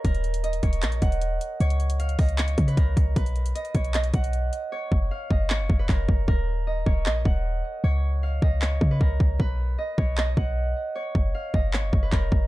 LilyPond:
<<
  \new Staff \with { instrumentName = "Harp" } { \time 4/4 \key ees \minor \tempo 4 = 154 bes'4 ees''8 des''8 ees''8 ges''4. | des''4 f''8 ees''8 des''8. ces''16 bes'8 r8 | b'4 ees''8 des''8 ees''8 fis''4. | des''4 f''8 ees''8 des''8. ces''16 bes'8 r8 |
bes'4 ees''8 des''8 ees''8 ges''4. | des''4 f''8 ees''8 des''8. ces''16 bes'8 r8 | b'4 ees''8 des''8 ees''8 fis''4. | des''4 f''8 ees''8 des''8. ces''16 bes'8 r8 | }
  \new Staff \with { instrumentName = "808-style bass" } { \clef bass \time 4/4 \key ees \minor ees,,4. ees,,8 bes,,8 ees,,4 r8 | des,4. des,4 des8 des,8 des,8 | b,,4 r8 b,,4 b,,4 r8 | r8 ges,,8 r8 ges,,8 aes,,16 ges,,16 ges,,8 f,,8 ges,,8 |
ees,,4. ees,,8 bes,,8 ees,,4 r8 | des,4. des,4 des8 des,8 des,8 | b,,4 r8 b,,4 b,,4 r8 | r8 ges,,8 r8 ges,,8 aes,,16 ges,,16 ges,,8 f,,8 ges,,8 | }
  \new DrumStaff \with { instrumentName = "Drums" } \drummode { \time 4/4 <hh bd>16 hh16 hh16 hh16 hh16 hh16 <hh bd>16 hh16 <hc hh>16 hh16 <hh bd>16 hh16 hh8 hh8 | hh16 hh16 hh16 hh16 hh16 hh16 <hho bd>16 hh16 <hc hh>16 hh16 <hh bd>16 hh16 <hh bd>8 <hh bd>8 | <hh bd>16 hh16 hh16 hh16 hh16 hh16 <hh bd>16 hh16 <hc hh>16 hh16 <hh bd>16 hh16 hh8 hh8 | r8 bd8 r8 bd8 hc8 bd8 <hc bd>8 bd8 |
bd4 r8 bd8 hc8 bd8 r4 | r4 r8 bd8 hc8 bd8 bd8 bd8 | bd4 r8 bd8 hc8 bd8 r4 | r8 bd8 r8 bd8 hc8 bd8 <hc bd>8 bd8 | }
>>